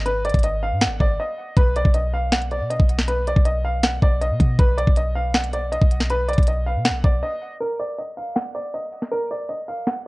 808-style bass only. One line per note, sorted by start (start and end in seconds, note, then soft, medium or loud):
0.00 0.32 G#1 loud
0.34 0.74 G#1 loud
0.72 0.88 G#2 loud
0.86 1.00 G#1 loud
1.00 1.19 G#1 loud
1.57 1.84 B1 loud
1.85 2.62 B1 loud
2.61 2.79 B2 loud
2.80 3.34 B1 loud
3.36 4.00 B1 loud
4.02 4.32 B1 loud
4.31 4.40 B2 loud
4.40 4.58 B2 loud
4.59 4.86 B1 loud
4.87 5.78 B1 loud
5.81 6.36 B1 loud
6.38 6.77 B1 loud
6.76 6.91 B2 loud
6.90 7.03 B1 loud
7.04 7.22 B1 loud